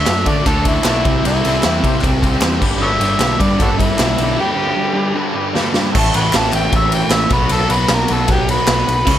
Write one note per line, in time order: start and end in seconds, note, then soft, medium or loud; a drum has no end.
0.00 0.29 E5 medium
0.05 0.23 F#2 medium
0.05 0.23 D3 medium
0.05 0.24 A3 medium
0.05 0.25 D4 medium
0.05 0.20 F#4 medium
0.05 0.19 A4 medium
0.05 0.19 D5 medium
0.05 snare loud
0.05 clap medium
0.05 ride loud
0.25 0.44 D3 medium
0.25 0.42 D3 medium
0.25 0.45 A3 medium
0.25 0.45 D4 medium
0.25 0.39 F#4 medium
0.25 0.41 A4 medium
0.25 0.46 D5 medium
0.25 0.40 D5 medium
0.25 kick medium
0.25 ride medium
0.45 0.77 D2 loud
0.45 0.63 D3 medium
0.45 0.64 A3 loud
0.45 0.64 D4 loud
0.45 0.66 A4 loud
0.45 kick loud
0.45 clap medium
0.45 ride loud
0.49 0.61 F#4 medium
0.49 0.61 A4 medium
0.49 0.61 D5 medium
0.65 0.83 D3 medium
0.65 0.84 A3 medium
0.65 0.84 D4 loud
0.65 1.24 E4 medium
0.65 0.79 F#4 medium
0.65 0.79 A4 medium
0.65 0.80 D5 medium
0.65 kick medium
0.65 ride medium
0.84 1.01 B1 medium
0.84 1.03 D3 medium
0.84 1.04 A3 medium
0.84 1.04 D4 loud
0.84 snare loud
0.84 clap loud
0.84 ride loud
0.88 1.00 F#4 medium
0.88 1.00 A4 medium
0.88 1.01 D5 medium
1.04 1.21 C2 medium
1.04 1.22 C3 medium
1.04 1.24 G3 loud
1.04 1.23 C4 loud
1.04 kick loud
1.04 ride medium
1.10 1.39 E4 medium
1.10 1.39 G4 medium
1.10 1.39 C5 medium
1.23 1.40 C2 medium
1.23 1.43 C3 loud
1.23 1.44 G3 loud
1.23 1.45 C4 loud
1.23 2.02 E4 loud
1.23 ride loud
1.44 1.60 C2 medium
1.44 1.62 C3 medium
1.44 1.64 G3 medium
1.44 1.64 C4 medium
1.44 1.58 E4 medium
1.44 1.59 G4 medium
1.44 1.59 C5 loud
1.44 ride medium
1.63 1.80 E2 medium
1.63 1.81 C3 medium
1.63 1.83 G3 medium
1.63 1.83 C4 medium
1.63 1.78 E4 medium
1.63 snare loud
1.63 clap medium
1.63 ride medium
1.67 1.78 G4 medium
1.67 1.79 D5 medium
1.83 2.01 C3 medium
1.83 1.99 C3 medium
1.83 2.02 G3 medium
1.83 2.03 C4 loud
1.83 kick loud
1.83 ride medium
1.87 1.98 E4 medium
1.87 1.99 G4 medium
1.87 1.98 C5 medium
2.01 2.35 C2 medium
2.01 2.19 C3 medium
2.01 2.21 G3 medium
2.01 2.21 C4 loud
2.01 kick loud
2.01 clap medium
2.01 ride medium
2.06 2.18 E4 medium
2.06 2.18 G4 medium
2.06 2.18 A4 medium
2.20 2.39 C3 medium
2.20 2.41 G3 medium
2.20 2.41 C4 loud
2.20 kick medium
2.20 ride medium
2.25 2.37 E4 medium
2.25 2.38 G4 medium
2.25 2.37 C5 medium
2.40 2.58 E2 medium
2.40 2.60 C3 medium
2.40 2.61 G3 medium
2.40 2.61 C4 medium
2.40 2.55 E4 loud
2.40 2.55 G4 medium
2.40 2.55 C5 loud
2.40 snare loud
2.40 clap loud
2.40 ride medium
2.59 2.78 G1 loud
2.59 2.78 G2 medium
2.59 2.79 D3 loud
2.59 2.81 G3 loud
2.59 2.93 D4 loud
2.59 2.92 G4 medium
2.59 2.93 B4 loud
2.59 kick loud
2.59 crash medium
2.79 2.97 G1 medium
2.79 2.98 G2 loud
2.79 2.98 D3 loud
2.79 3.00 G3 loud
2.79 2.91 A4 medium
2.79 2.89 C#5 medium
2.79 3.43 E5 loud
2.98 3.16 G1 medium
2.98 3.17 G2 medium
2.98 3.18 D3 medium
2.98 3.19 G3 medium
2.98 3.14 G4 medium
2.98 3.14 C#5 loud
2.98 ride medium
3.02 3.15 D4 medium
3.17 3.35 B1 medium
3.17 3.36 G2 medium
3.17 3.36 D3 medium
3.17 3.38 G3 medium
3.17 snare loud
3.17 clap medium
3.17 ride loud
3.22 3.35 D4 medium
3.22 3.34 G4 medium
3.22 3.35 B4 medium
3.36 3.55 G2 medium
3.36 3.56 G2 medium
3.36 3.57 D3 medium
3.36 3.58 G3 loud
3.40 3.53 D4 medium
3.40 3.53 G4 medium
3.40 3.54 B4 medium
3.40 3.60 D5 medium
3.40 kick medium
3.40 ride medium
3.57 3.91 G1 medium
3.57 3.75 G2 loud
3.57 3.76 D3 loud
3.57 3.77 G3 loud
3.57 3.73 D4 medium
3.57 3.72 G4 medium
3.57 kick loud
3.57 ride loud
3.61 3.69 D4 medium
3.61 3.70 F#4 medium
3.61 3.83 A4 loud
3.61 3.73 B4 medium
3.61 clap medium
3.76 3.94 G2 medium
3.76 3.94 D3 loud
3.76 3.95 G3 medium
3.76 kick medium
3.80 3.94 D4 medium
3.80 4.37 E4 medium
3.80 3.93 G4 medium
3.80 3.94 B4 medium
3.80 ride medium
3.95 4.14 B1 medium
3.95 4.15 G2 medium
3.95 4.16 D3 medium
3.95 4.17 G3 loud
3.95 clap medium
3.99 4.13 D4 medium
3.99 4.14 G4 medium
3.99 4.13 B4 medium
3.99 snare loud
3.99 ride loud
4.17 4.34 B1 medium
4.17 4.35 G2 medium
4.17 4.36 D3 medium
4.17 4.37 G3 medium
4.17 ride medium
4.22 4.34 D4 medium
4.22 4.33 G4 medium
4.22 4.34 B4 medium
4.36 4.54 G2 loud
4.36 4.55 D3 loud
4.36 4.56 G3 loud
4.36 4.50 D4 loud
4.36 4.51 G4 medium
4.36 4.51 B4 loud
4.40 5.15 G4 loud
4.55 4.74 G2 medium
4.55 4.74 D3 medium
4.55 4.76 G3 medium
4.55 4.70 D4 loud
4.55 4.70 G4 medium
4.55 4.70 B4 loud
4.75 4.92 G2 medium
4.75 4.93 D3 medium
4.75 4.94 G3 medium
4.75 4.91 B4 medium
4.80 4.91 D4 medium
4.80 4.92 G4 medium
4.93 5.13 G2 medium
4.93 5.13 D3 medium
4.93 5.15 G3 medium
4.93 5.09 D4 medium
4.93 5.10 G4 medium
4.93 5.10 B4 medium
5.13 5.33 G2 medium
5.13 5.33 D3 loud
5.13 5.34 G3 loud
5.13 5.28 D4 medium
5.13 5.28 G4 medium
5.13 5.29 B4 loud
5.33 5.52 G2 medium
5.33 5.54 D3 medium
5.33 5.54 G3 loud
5.33 5.47 D4 medium
5.33 5.48 G4 medium
5.33 5.49 B4 loud
5.53 5.72 G2 medium
5.53 5.73 D3 medium
5.53 5.73 G3 medium
5.53 5.67 D4 loud
5.53 5.68 G4 medium
5.53 5.69 B4 loud
5.53 snare medium
5.73 5.92 G2 medium
5.73 5.90 D3 medium
5.73 5.93 G3 loud
5.73 5.88 D4 medium
5.73 5.89 G4 medium
5.73 snare medium
5.78 5.89 B4 medium
5.91 7.28 A2 loud
5.91 7.29 E3 loud
5.91 6.07 E4 loud
5.95 6.10 A1 loud
5.95 7.31 A3 loud
5.95 6.08 A4 medium
5.95 6.08 C#5 loud
5.95 6.15 A5 loud
5.95 kick loud
5.95 crash loud
6.13 6.29 A1 medium
6.13 6.26 E4 loud
6.13 6.27 A4 medium
6.13 6.27 C#5 loud
6.13 6.21 F#5 medium
6.13 6.22 G#5 medium
6.13 6.38 B5 medium
6.13 ride medium
6.33 6.49 A1 loud
6.33 6.46 E4 medium
6.33 6.47 A4 medium
6.33 6.47 C#5 medium
6.33 6.54 A5 loud
6.33 snare loud
6.33 clap loud
6.33 ride loud
6.52 6.68 A1 medium
6.52 6.67 E4 medium
6.52 6.67 C#5 medium
6.52 6.73 G5 medium
6.52 clap medium
6.52 ride medium
6.57 6.68 A4 medium
6.72 7.02 A1 loud
6.72 6.85 E4 medium
6.72 6.85 A4 medium
6.72 6.86 C#5 medium
6.72 kick loud
6.72 ride loud
6.76 6.93 E5 loud
6.92 7.13 G5 medium
6.92 ride medium
6.96 7.07 E4 medium
6.96 7.07 A4 medium
6.96 7.07 C#5 medium
7.10 7.25 A1 loud
7.10 7.31 E5 medium
7.10 snare loud
7.10 clap medium
7.10 ride loud
7.15 7.26 E4 medium
7.15 7.27 A4 medium
7.15 7.27 C#5 loud
7.29 7.46 B1 medium
7.29 8.84 B2 medium
7.29 8.86 F#3 medium
7.29 7.62 D#4 medium
7.29 7.62 F#4 medium
7.29 7.63 B4 medium
7.29 kick loud
7.29 ride medium
7.33 8.87 B3 loud
7.33 7.54 B4 medium
7.49 7.65 B1 loud
7.49 7.74 A4 loud
7.49 ride loud
7.68 7.84 B1 medium
7.68 7.82 D#4 loud
7.68 7.82 F#4 loud
7.68 7.83 B4 loud
7.68 ride medium
7.72 7.90 B4 medium
7.88 8.04 B1 loud
7.88 snare loud
7.88 clap medium
7.88 ride loud
7.93 8.04 D#4 medium
7.93 8.05 F#4 medium
7.93 8.14 A#4 loud
7.93 8.05 B4 medium
8.08 8.24 B1 medium
8.08 8.22 D#4 medium
8.08 8.22 F#4 medium
8.08 8.22 B4 medium
8.08 ride medium
8.13 8.30 A4 medium
8.26 8.58 B1 loud
8.26 8.40 D#4 medium
8.26 8.41 F#4 medium
8.26 8.41 G#4 medium
8.26 kick loud
8.26 ride loud
8.32 8.49 G4 loud
8.49 8.62 D#4 medium
8.49 8.62 F#4 medium
8.49 9.19 B4 loud
8.49 8.62 C#5 medium
8.49 ride medium
8.66 8.82 B1 loud
8.66 8.80 D#4 medium
8.66 8.80 F#4 medium
8.66 8.80 A4 loud
8.66 snare loud
8.66 clap medium
8.66 ride loud
8.86 9.02 B1 medium
8.86 8.99 D#4 medium
8.86 9.00 F#4 medium
8.86 8.99 B4 medium
8.86 ride medium
9.05 9.19 C#2 medium
9.05 9.19 C#3 medium
9.05 9.19 G#3 loud
9.05 9.18 E4 loud
9.05 9.19 G#4 loud
9.05 9.19 C#5 loud
9.05 kick loud
9.05 crash loud
9.10 9.19 C#4 loud